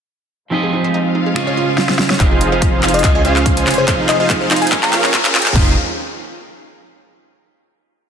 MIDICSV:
0, 0, Header, 1, 11, 480
1, 0, Start_track
1, 0, Key_signature, -4, "minor"
1, 0, Tempo, 419580
1, 597, Time_signature, 4, 2, 24, 8
1, 9260, End_track
2, 0, Start_track
2, 0, Title_t, "Synth pluck"
2, 0, Program_c, 0, 84
2, 2516, Note_on_c, 0, 77, 93
2, 2854, Note_off_c, 0, 77, 0
2, 2886, Note_on_c, 0, 77, 82
2, 3210, Note_off_c, 0, 77, 0
2, 3238, Note_on_c, 0, 77, 92
2, 3451, Note_off_c, 0, 77, 0
2, 3478, Note_on_c, 0, 77, 99
2, 3575, Note_off_c, 0, 77, 0
2, 3606, Note_on_c, 0, 80, 91
2, 3691, Note_off_c, 0, 80, 0
2, 3718, Note_on_c, 0, 77, 102
2, 4054, Note_off_c, 0, 77, 0
2, 4086, Note_on_c, 0, 80, 81
2, 4411, Note_off_c, 0, 80, 0
2, 4438, Note_on_c, 0, 77, 97
2, 4775, Note_off_c, 0, 77, 0
2, 4805, Note_on_c, 0, 77, 88
2, 5130, Note_off_c, 0, 77, 0
2, 5157, Note_on_c, 0, 77, 96
2, 5370, Note_off_c, 0, 77, 0
2, 5396, Note_on_c, 0, 77, 101
2, 5494, Note_off_c, 0, 77, 0
2, 5525, Note_on_c, 0, 79, 93
2, 5610, Note_off_c, 0, 79, 0
2, 5637, Note_on_c, 0, 77, 106
2, 5974, Note_off_c, 0, 77, 0
2, 6006, Note_on_c, 0, 79, 82
2, 6331, Note_off_c, 0, 79, 0
2, 6358, Note_on_c, 0, 77, 100
2, 6539, Note_off_c, 0, 77, 0
2, 9260, End_track
3, 0, Start_track
3, 0, Title_t, "FM electric piano"
3, 0, Program_c, 1, 5
3, 3364, Note_on_c, 1, 75, 89
3, 3454, Note_off_c, 1, 75, 0
3, 3604, Note_on_c, 1, 75, 76
3, 3676, Note_off_c, 1, 75, 0
3, 4323, Note_on_c, 1, 72, 85
3, 4396, Note_off_c, 1, 72, 0
3, 4436, Note_on_c, 1, 72, 74
3, 4518, Note_off_c, 1, 72, 0
3, 4675, Note_on_c, 1, 75, 89
3, 4758, Note_off_c, 1, 75, 0
3, 4803, Note_on_c, 1, 75, 77
3, 4876, Note_off_c, 1, 75, 0
3, 5283, Note_on_c, 1, 80, 90
3, 5356, Note_off_c, 1, 80, 0
3, 5524, Note_on_c, 1, 82, 93
3, 5877, Note_off_c, 1, 82, 0
3, 9260, End_track
4, 0, Start_track
4, 0, Title_t, "Supersaw synth"
4, 0, Program_c, 2, 81
4, 2515, Note_on_c, 2, 72, 78
4, 2516, Note_on_c, 2, 63, 89
4, 2516, Note_on_c, 2, 65, 82
4, 2516, Note_on_c, 2, 68, 81
4, 2516, Note_on_c, 2, 77, 98
4, 2853, Note_off_c, 2, 65, 0
4, 2853, Note_off_c, 2, 68, 0
4, 2853, Note_off_c, 2, 72, 0
4, 2853, Note_off_c, 2, 77, 0
4, 2854, Note_off_c, 2, 63, 0
4, 2883, Note_on_c, 2, 63, 82
4, 2883, Note_on_c, 2, 65, 76
4, 2883, Note_on_c, 2, 68, 75
4, 2883, Note_on_c, 2, 72, 76
4, 2883, Note_on_c, 2, 77, 94
4, 3209, Note_off_c, 2, 63, 0
4, 3209, Note_off_c, 2, 65, 0
4, 3209, Note_off_c, 2, 68, 0
4, 3209, Note_off_c, 2, 72, 0
4, 3209, Note_off_c, 2, 77, 0
4, 3235, Note_on_c, 2, 63, 86
4, 3235, Note_on_c, 2, 65, 76
4, 3235, Note_on_c, 2, 68, 79
4, 3235, Note_on_c, 2, 77, 95
4, 3236, Note_on_c, 2, 72, 79
4, 3449, Note_off_c, 2, 63, 0
4, 3449, Note_off_c, 2, 65, 0
4, 3449, Note_off_c, 2, 68, 0
4, 3449, Note_off_c, 2, 77, 0
4, 3450, Note_off_c, 2, 72, 0
4, 3604, Note_on_c, 2, 61, 84
4, 3604, Note_on_c, 2, 65, 75
4, 3604, Note_on_c, 2, 68, 78
4, 3605, Note_on_c, 2, 72, 76
4, 3605, Note_on_c, 2, 80, 93
4, 3690, Note_off_c, 2, 61, 0
4, 3690, Note_off_c, 2, 65, 0
4, 3690, Note_off_c, 2, 68, 0
4, 3690, Note_off_c, 2, 72, 0
4, 3690, Note_off_c, 2, 80, 0
4, 3716, Note_on_c, 2, 61, 94
4, 3716, Note_on_c, 2, 65, 85
4, 3716, Note_on_c, 2, 68, 89
4, 3716, Note_on_c, 2, 72, 85
4, 3716, Note_on_c, 2, 77, 105
4, 4054, Note_off_c, 2, 61, 0
4, 4054, Note_off_c, 2, 65, 0
4, 4054, Note_off_c, 2, 68, 0
4, 4054, Note_off_c, 2, 72, 0
4, 4054, Note_off_c, 2, 77, 0
4, 4084, Note_on_c, 2, 61, 71
4, 4084, Note_on_c, 2, 65, 67
4, 4084, Note_on_c, 2, 68, 66
4, 4084, Note_on_c, 2, 72, 66
4, 4084, Note_on_c, 2, 80, 83
4, 4410, Note_off_c, 2, 61, 0
4, 4410, Note_off_c, 2, 65, 0
4, 4410, Note_off_c, 2, 68, 0
4, 4410, Note_off_c, 2, 72, 0
4, 4410, Note_off_c, 2, 80, 0
4, 4435, Note_on_c, 2, 65, 82
4, 4436, Note_on_c, 2, 63, 88
4, 4436, Note_on_c, 2, 68, 83
4, 4436, Note_on_c, 2, 72, 83
4, 4436, Note_on_c, 2, 77, 100
4, 4773, Note_off_c, 2, 65, 0
4, 4773, Note_off_c, 2, 68, 0
4, 4774, Note_off_c, 2, 63, 0
4, 4774, Note_off_c, 2, 72, 0
4, 4774, Note_off_c, 2, 77, 0
4, 4804, Note_on_c, 2, 63, 85
4, 4804, Note_on_c, 2, 72, 76
4, 4805, Note_on_c, 2, 65, 76
4, 4805, Note_on_c, 2, 68, 76
4, 4805, Note_on_c, 2, 77, 92
4, 5130, Note_off_c, 2, 63, 0
4, 5130, Note_off_c, 2, 65, 0
4, 5130, Note_off_c, 2, 68, 0
4, 5130, Note_off_c, 2, 72, 0
4, 5130, Note_off_c, 2, 77, 0
4, 5156, Note_on_c, 2, 63, 87
4, 5156, Note_on_c, 2, 65, 78
4, 5156, Note_on_c, 2, 72, 80
4, 5157, Note_on_c, 2, 68, 78
4, 5157, Note_on_c, 2, 77, 99
4, 5370, Note_off_c, 2, 63, 0
4, 5370, Note_off_c, 2, 65, 0
4, 5370, Note_off_c, 2, 68, 0
4, 5370, Note_off_c, 2, 72, 0
4, 5370, Note_off_c, 2, 77, 0
4, 5396, Note_on_c, 2, 65, 88
4, 5396, Note_on_c, 2, 70, 87
4, 5396, Note_on_c, 2, 77, 106
4, 5494, Note_off_c, 2, 65, 0
4, 5494, Note_off_c, 2, 70, 0
4, 5494, Note_off_c, 2, 77, 0
4, 5524, Note_on_c, 2, 68, 76
4, 5524, Note_on_c, 2, 70, 78
4, 5525, Note_on_c, 2, 61, 86
4, 5525, Note_on_c, 2, 65, 79
4, 5525, Note_on_c, 2, 79, 95
4, 5610, Note_off_c, 2, 61, 0
4, 5610, Note_off_c, 2, 65, 0
4, 5610, Note_off_c, 2, 68, 0
4, 5610, Note_off_c, 2, 70, 0
4, 5610, Note_off_c, 2, 79, 0
4, 5636, Note_on_c, 2, 61, 95
4, 5636, Note_on_c, 2, 65, 91
4, 5636, Note_on_c, 2, 68, 88
4, 5636, Note_on_c, 2, 70, 88
4, 5636, Note_on_c, 2, 77, 106
4, 5974, Note_off_c, 2, 61, 0
4, 5974, Note_off_c, 2, 65, 0
4, 5974, Note_off_c, 2, 68, 0
4, 5974, Note_off_c, 2, 70, 0
4, 5974, Note_off_c, 2, 77, 0
4, 6004, Note_on_c, 2, 61, 78
4, 6004, Note_on_c, 2, 65, 66
4, 6004, Note_on_c, 2, 79, 79
4, 6005, Note_on_c, 2, 68, 70
4, 6005, Note_on_c, 2, 70, 67
4, 6330, Note_off_c, 2, 61, 0
4, 6330, Note_off_c, 2, 65, 0
4, 6330, Note_off_c, 2, 68, 0
4, 6330, Note_off_c, 2, 70, 0
4, 6330, Note_off_c, 2, 79, 0
4, 6356, Note_on_c, 2, 63, 86
4, 6357, Note_on_c, 2, 65, 80
4, 6357, Note_on_c, 2, 68, 79
4, 6357, Note_on_c, 2, 72, 78
4, 6357, Note_on_c, 2, 77, 100
4, 6538, Note_off_c, 2, 63, 0
4, 6538, Note_off_c, 2, 65, 0
4, 6538, Note_off_c, 2, 68, 0
4, 6538, Note_off_c, 2, 72, 0
4, 6538, Note_off_c, 2, 77, 0
4, 9260, End_track
5, 0, Start_track
5, 0, Title_t, "Clean electric guitar"
5, 0, Program_c, 3, 27
5, 573, Note_on_c, 3, 53, 70
5, 585, Note_on_c, 3, 60, 63
5, 596, Note_on_c, 3, 67, 65
5, 608, Note_on_c, 3, 68, 64
5, 619, Note_on_c, 3, 75, 78
5, 1500, Note_off_c, 3, 53, 0
5, 1506, Note_off_c, 3, 60, 0
5, 1512, Note_off_c, 3, 67, 0
5, 1517, Note_off_c, 3, 68, 0
5, 1523, Note_off_c, 3, 75, 0
5, 1532, Note_on_c, 3, 49, 74
5, 1543, Note_on_c, 3, 61, 66
5, 1555, Note_on_c, 3, 65, 70
5, 1567, Note_on_c, 3, 72, 69
5, 1578, Note_on_c, 3, 75, 84
5, 2460, Note_off_c, 3, 49, 0
5, 2465, Note_off_c, 3, 61, 0
5, 2471, Note_off_c, 3, 65, 0
5, 2477, Note_off_c, 3, 72, 0
5, 2482, Note_off_c, 3, 75, 0
5, 2492, Note_on_c, 3, 53, 73
5, 2503, Note_on_c, 3, 60, 69
5, 2515, Note_on_c, 3, 67, 67
5, 2526, Note_on_c, 3, 68, 71
5, 2538, Note_on_c, 3, 75, 82
5, 3420, Note_off_c, 3, 53, 0
5, 3425, Note_off_c, 3, 60, 0
5, 3431, Note_off_c, 3, 67, 0
5, 3436, Note_off_c, 3, 68, 0
5, 3442, Note_off_c, 3, 75, 0
5, 3453, Note_on_c, 3, 49, 78
5, 3464, Note_on_c, 3, 61, 71
5, 3476, Note_on_c, 3, 65, 74
5, 3487, Note_on_c, 3, 72, 72
5, 3499, Note_on_c, 3, 75, 86
5, 4380, Note_off_c, 3, 49, 0
5, 4386, Note_off_c, 3, 61, 0
5, 4392, Note_off_c, 3, 65, 0
5, 4397, Note_off_c, 3, 72, 0
5, 4403, Note_off_c, 3, 75, 0
5, 4413, Note_on_c, 3, 53, 77
5, 4425, Note_on_c, 3, 60, 73
5, 4437, Note_on_c, 3, 67, 73
5, 4448, Note_on_c, 3, 68, 72
5, 4459, Note_on_c, 3, 75, 85
5, 5340, Note_off_c, 3, 53, 0
5, 5346, Note_off_c, 3, 60, 0
5, 5352, Note_off_c, 3, 67, 0
5, 5357, Note_off_c, 3, 68, 0
5, 5363, Note_off_c, 3, 75, 0
5, 5373, Note_on_c, 3, 58, 83
5, 5385, Note_on_c, 3, 65, 76
5, 5396, Note_on_c, 3, 68, 76
5, 5407, Note_on_c, 3, 72, 74
5, 5419, Note_on_c, 3, 73, 86
5, 6300, Note_off_c, 3, 58, 0
5, 6306, Note_off_c, 3, 65, 0
5, 6311, Note_off_c, 3, 68, 0
5, 6317, Note_off_c, 3, 72, 0
5, 6323, Note_off_c, 3, 73, 0
5, 6324, Note_on_c, 3, 53, 82
5, 6341, Note_on_c, 3, 60, 77
5, 6358, Note_on_c, 3, 67, 78
5, 6375, Note_on_c, 3, 68, 78
5, 6392, Note_on_c, 3, 75, 89
5, 6521, Note_off_c, 3, 53, 0
5, 6530, Note_off_c, 3, 60, 0
5, 6539, Note_off_c, 3, 67, 0
5, 6548, Note_off_c, 3, 68, 0
5, 6557, Note_off_c, 3, 75, 0
5, 9260, End_track
6, 0, Start_track
6, 0, Title_t, "Synth arpeggio sound"
6, 0, Program_c, 4, 84
6, 596, Note_on_c, 4, 63, 78
6, 680, Note_off_c, 4, 63, 0
6, 724, Note_on_c, 4, 68, 72
6, 798, Note_off_c, 4, 68, 0
6, 837, Note_on_c, 4, 63, 71
6, 958, Note_off_c, 4, 63, 0
6, 966, Note_on_c, 4, 72, 97
6, 1039, Note_off_c, 4, 72, 0
6, 1077, Note_on_c, 4, 63, 102
6, 1161, Note_off_c, 4, 63, 0
6, 1317, Note_on_c, 4, 63, 72
6, 1401, Note_off_c, 4, 63, 0
6, 1444, Note_on_c, 4, 68, 75
6, 1518, Note_off_c, 4, 68, 0
6, 1557, Note_on_c, 4, 65, 79
6, 1678, Note_off_c, 4, 65, 0
6, 1684, Note_on_c, 4, 73, 95
6, 1758, Note_off_c, 4, 73, 0
6, 1798, Note_on_c, 4, 65, 98
6, 1882, Note_off_c, 4, 65, 0
6, 2038, Note_on_c, 4, 65, 81
6, 2121, Note_off_c, 4, 65, 0
6, 2165, Note_on_c, 4, 72, 74
6, 2239, Note_off_c, 4, 72, 0
6, 2279, Note_on_c, 4, 65, 74
6, 2399, Note_off_c, 4, 65, 0
6, 2405, Note_on_c, 4, 73, 93
6, 2479, Note_off_c, 4, 73, 0
6, 2516, Note_on_c, 4, 63, 78
6, 2600, Note_off_c, 4, 63, 0
6, 2644, Note_on_c, 4, 68, 75
6, 2718, Note_off_c, 4, 68, 0
6, 2757, Note_on_c, 4, 63, 69
6, 2878, Note_off_c, 4, 63, 0
6, 2885, Note_on_c, 4, 72, 99
6, 2958, Note_off_c, 4, 72, 0
6, 2996, Note_on_c, 4, 63, 99
6, 3080, Note_off_c, 4, 63, 0
6, 3236, Note_on_c, 4, 63, 72
6, 3320, Note_off_c, 4, 63, 0
6, 3364, Note_on_c, 4, 68, 75
6, 3438, Note_off_c, 4, 68, 0
6, 3476, Note_on_c, 4, 65, 82
6, 3598, Note_off_c, 4, 65, 0
6, 3604, Note_on_c, 4, 73, 94
6, 3678, Note_off_c, 4, 73, 0
6, 3716, Note_on_c, 4, 65, 98
6, 3800, Note_off_c, 4, 65, 0
6, 3956, Note_on_c, 4, 65, 79
6, 4040, Note_off_c, 4, 65, 0
6, 4085, Note_on_c, 4, 72, 76
6, 4158, Note_off_c, 4, 72, 0
6, 4196, Note_on_c, 4, 65, 73
6, 4318, Note_off_c, 4, 65, 0
6, 4324, Note_on_c, 4, 73, 101
6, 4398, Note_off_c, 4, 73, 0
6, 4436, Note_on_c, 4, 63, 103
6, 4521, Note_off_c, 4, 63, 0
6, 4676, Note_on_c, 4, 63, 74
6, 4761, Note_off_c, 4, 63, 0
6, 4804, Note_on_c, 4, 68, 76
6, 4878, Note_off_c, 4, 68, 0
6, 4916, Note_on_c, 4, 63, 85
6, 5038, Note_off_c, 4, 63, 0
6, 5044, Note_on_c, 4, 72, 102
6, 5118, Note_off_c, 4, 72, 0
6, 5157, Note_on_c, 4, 63, 101
6, 5241, Note_off_c, 4, 63, 0
6, 5397, Note_on_c, 4, 65, 81
6, 5481, Note_off_c, 4, 65, 0
6, 5525, Note_on_c, 4, 70, 74
6, 5598, Note_off_c, 4, 70, 0
6, 5636, Note_on_c, 4, 65, 75
6, 5758, Note_off_c, 4, 65, 0
6, 5764, Note_on_c, 4, 73, 103
6, 5838, Note_off_c, 4, 73, 0
6, 5875, Note_on_c, 4, 65, 104
6, 5960, Note_off_c, 4, 65, 0
6, 6115, Note_on_c, 4, 65, 76
6, 6200, Note_off_c, 4, 65, 0
6, 6244, Note_on_c, 4, 70, 74
6, 6318, Note_off_c, 4, 70, 0
6, 6356, Note_on_c, 4, 63, 94
6, 6580, Note_off_c, 4, 63, 0
6, 9260, End_track
7, 0, Start_track
7, 0, Title_t, "String section"
7, 0, Program_c, 5, 48
7, 595, Note_on_c, 5, 72, 65
7, 595, Note_on_c, 5, 77, 83
7, 596, Note_on_c, 5, 56, 76
7, 596, Note_on_c, 5, 63, 64
7, 596, Note_on_c, 5, 65, 69
7, 1542, Note_off_c, 5, 72, 0
7, 1547, Note_off_c, 5, 63, 0
7, 1556, Note_on_c, 5, 72, 66
7, 1557, Note_on_c, 5, 61, 64
7, 2497, Note_off_c, 5, 56, 0
7, 2497, Note_off_c, 5, 65, 0
7, 2497, Note_off_c, 5, 77, 0
7, 2503, Note_off_c, 5, 72, 0
7, 2507, Note_off_c, 5, 61, 0
7, 2516, Note_on_c, 5, 51, 75
7, 2516, Note_on_c, 5, 56, 75
7, 2517, Note_on_c, 5, 53, 67
7, 2517, Note_on_c, 5, 65, 80
7, 2517, Note_on_c, 5, 72, 74
7, 3463, Note_off_c, 5, 53, 0
7, 3463, Note_off_c, 5, 65, 0
7, 3467, Note_off_c, 5, 51, 0
7, 3476, Note_on_c, 5, 49, 75
7, 3477, Note_on_c, 5, 53, 70
7, 3477, Note_on_c, 5, 65, 88
7, 4427, Note_off_c, 5, 49, 0
7, 4437, Note_on_c, 5, 51, 76
7, 5368, Note_off_c, 5, 56, 0
7, 5368, Note_off_c, 5, 72, 0
7, 5378, Note_off_c, 5, 65, 0
7, 5387, Note_off_c, 5, 51, 0
7, 5397, Note_on_c, 5, 56, 67
7, 5397, Note_on_c, 5, 58, 70
7, 5398, Note_on_c, 5, 49, 74
7, 5398, Note_on_c, 5, 65, 84
7, 6328, Note_off_c, 5, 53, 0
7, 6343, Note_off_c, 5, 56, 0
7, 6343, Note_off_c, 5, 65, 0
7, 6347, Note_off_c, 5, 58, 0
7, 6348, Note_off_c, 5, 49, 0
7, 6357, Note_on_c, 5, 53, 67
7, 6357, Note_on_c, 5, 56, 66
7, 6357, Note_on_c, 5, 60, 69
7, 6357, Note_on_c, 5, 65, 81
7, 6358, Note_on_c, 5, 51, 72
7, 6580, Note_off_c, 5, 53, 0
7, 6580, Note_off_c, 5, 56, 0
7, 6580, Note_off_c, 5, 60, 0
7, 6580, Note_off_c, 5, 65, 0
7, 6581, Note_off_c, 5, 51, 0
7, 9260, End_track
8, 0, Start_track
8, 0, Title_t, "Sub bass"
8, 0, Program_c, 6, 38
8, 2516, Note_on_c, 6, 29, 96
8, 3462, Note_off_c, 6, 29, 0
8, 3476, Note_on_c, 6, 37, 97
8, 4182, Note_off_c, 6, 37, 0
8, 4196, Note_on_c, 6, 29, 95
8, 5396, Note_on_c, 6, 34, 96
8, 5413, Note_off_c, 6, 29, 0
8, 5862, Note_off_c, 6, 34, 0
8, 6117, Note_on_c, 6, 32, 86
8, 6234, Note_off_c, 6, 32, 0
8, 6245, Note_on_c, 6, 34, 91
8, 6348, Note_off_c, 6, 34, 0
8, 6357, Note_on_c, 6, 29, 98
8, 6580, Note_off_c, 6, 29, 0
8, 9260, End_track
9, 0, Start_track
9, 0, Title_t, "Riser"
9, 0, Program_c, 7, 103
9, 2516, Note_on_c, 7, 60, 76
9, 6357, Note_off_c, 7, 60, 0
9, 9260, End_track
10, 0, Start_track
10, 0, Title_t, "Swell"
10, 0, Program_c, 8, 103
10, 1556, Note_on_c, 8, 60, 71
10, 2516, Note_off_c, 8, 60, 0
10, 9260, End_track
11, 0, Start_track
11, 0, Title_t, "Drums"
11, 1556, Note_on_c, 9, 26, 96
11, 1670, Note_off_c, 9, 26, 0
11, 2036, Note_on_c, 9, 38, 58
11, 2150, Note_off_c, 9, 38, 0
11, 2164, Note_on_c, 9, 38, 61
11, 2276, Note_off_c, 9, 38, 0
11, 2276, Note_on_c, 9, 38, 83
11, 2390, Note_off_c, 9, 38, 0
11, 2404, Note_on_c, 9, 38, 78
11, 2516, Note_on_c, 9, 36, 92
11, 2516, Note_on_c, 9, 39, 46
11, 2516, Note_on_c, 9, 42, 77
11, 2518, Note_off_c, 9, 38, 0
11, 2631, Note_off_c, 9, 36, 0
11, 2631, Note_off_c, 9, 39, 0
11, 2631, Note_off_c, 9, 42, 0
11, 2756, Note_on_c, 9, 42, 66
11, 2871, Note_off_c, 9, 42, 0
11, 2996, Note_on_c, 9, 36, 94
11, 2996, Note_on_c, 9, 42, 80
11, 3110, Note_off_c, 9, 42, 0
11, 3111, Note_off_c, 9, 36, 0
11, 3236, Note_on_c, 9, 39, 55
11, 3236, Note_on_c, 9, 42, 49
11, 3300, Note_off_c, 9, 42, 0
11, 3300, Note_on_c, 9, 42, 63
11, 3350, Note_off_c, 9, 39, 0
11, 3365, Note_off_c, 9, 42, 0
11, 3365, Note_on_c, 9, 42, 49
11, 3420, Note_off_c, 9, 42, 0
11, 3420, Note_on_c, 9, 42, 66
11, 3476, Note_off_c, 9, 42, 0
11, 3476, Note_on_c, 9, 36, 93
11, 3476, Note_on_c, 9, 39, 59
11, 3476, Note_on_c, 9, 42, 81
11, 3591, Note_off_c, 9, 36, 0
11, 3591, Note_off_c, 9, 39, 0
11, 3591, Note_off_c, 9, 42, 0
11, 3716, Note_on_c, 9, 42, 67
11, 3830, Note_off_c, 9, 42, 0
11, 3844, Note_on_c, 9, 39, 52
11, 3956, Note_on_c, 9, 36, 95
11, 3957, Note_on_c, 9, 42, 81
11, 3958, Note_off_c, 9, 39, 0
11, 4070, Note_off_c, 9, 36, 0
11, 4071, Note_off_c, 9, 42, 0
11, 4084, Note_on_c, 9, 42, 64
11, 4197, Note_off_c, 9, 42, 0
11, 4197, Note_on_c, 9, 39, 68
11, 4197, Note_on_c, 9, 42, 50
11, 4239, Note_off_c, 9, 42, 0
11, 4239, Note_on_c, 9, 42, 66
11, 4276, Note_off_c, 9, 42, 0
11, 4276, Note_on_c, 9, 42, 79
11, 4311, Note_off_c, 9, 39, 0
11, 4391, Note_off_c, 9, 42, 0
11, 4436, Note_on_c, 9, 36, 95
11, 4436, Note_on_c, 9, 39, 73
11, 4436, Note_on_c, 9, 42, 76
11, 4551, Note_off_c, 9, 36, 0
11, 4551, Note_off_c, 9, 39, 0
11, 4551, Note_off_c, 9, 42, 0
11, 4677, Note_on_c, 9, 39, 80
11, 4677, Note_on_c, 9, 42, 67
11, 4791, Note_off_c, 9, 39, 0
11, 4791, Note_off_c, 9, 42, 0
11, 4916, Note_on_c, 9, 36, 101
11, 4917, Note_on_c, 9, 39, 84
11, 4917, Note_on_c, 9, 42, 81
11, 5031, Note_off_c, 9, 36, 0
11, 5032, Note_off_c, 9, 39, 0
11, 5032, Note_off_c, 9, 42, 0
11, 5157, Note_on_c, 9, 39, 89
11, 5157, Note_on_c, 9, 42, 49
11, 5221, Note_off_c, 9, 42, 0
11, 5221, Note_on_c, 9, 42, 65
11, 5271, Note_off_c, 9, 39, 0
11, 5285, Note_off_c, 9, 42, 0
11, 5285, Note_on_c, 9, 42, 50
11, 5341, Note_off_c, 9, 42, 0
11, 5341, Note_on_c, 9, 42, 65
11, 5396, Note_on_c, 9, 36, 99
11, 5398, Note_off_c, 9, 42, 0
11, 5398, Note_on_c, 9, 39, 96
11, 5398, Note_on_c, 9, 42, 81
11, 5511, Note_off_c, 9, 36, 0
11, 5512, Note_off_c, 9, 39, 0
11, 5512, Note_off_c, 9, 42, 0
11, 5525, Note_on_c, 9, 39, 81
11, 5638, Note_off_c, 9, 39, 0
11, 5638, Note_on_c, 9, 39, 93
11, 5638, Note_on_c, 9, 42, 67
11, 5752, Note_off_c, 9, 39, 0
11, 5752, Note_off_c, 9, 42, 0
11, 5765, Note_on_c, 9, 39, 84
11, 5877, Note_on_c, 9, 36, 98
11, 5878, Note_off_c, 9, 39, 0
11, 5878, Note_on_c, 9, 39, 106
11, 5878, Note_on_c, 9, 42, 80
11, 5991, Note_off_c, 9, 36, 0
11, 5992, Note_off_c, 9, 39, 0
11, 5992, Note_off_c, 9, 42, 0
11, 6005, Note_on_c, 9, 39, 97
11, 6005, Note_on_c, 9, 42, 67
11, 6118, Note_off_c, 9, 39, 0
11, 6118, Note_off_c, 9, 42, 0
11, 6118, Note_on_c, 9, 39, 107
11, 6118, Note_on_c, 9, 42, 49
11, 6161, Note_off_c, 9, 42, 0
11, 6161, Note_on_c, 9, 42, 66
11, 6197, Note_off_c, 9, 42, 0
11, 6197, Note_on_c, 9, 42, 82
11, 6232, Note_off_c, 9, 39, 0
11, 6245, Note_on_c, 9, 39, 95
11, 6312, Note_off_c, 9, 42, 0
11, 6357, Note_on_c, 9, 36, 111
11, 6357, Note_on_c, 9, 43, 108
11, 6357, Note_on_c, 9, 46, 88
11, 6359, Note_off_c, 9, 39, 0
11, 6471, Note_off_c, 9, 36, 0
11, 6471, Note_off_c, 9, 43, 0
11, 6471, Note_off_c, 9, 46, 0
11, 9260, End_track
0, 0, End_of_file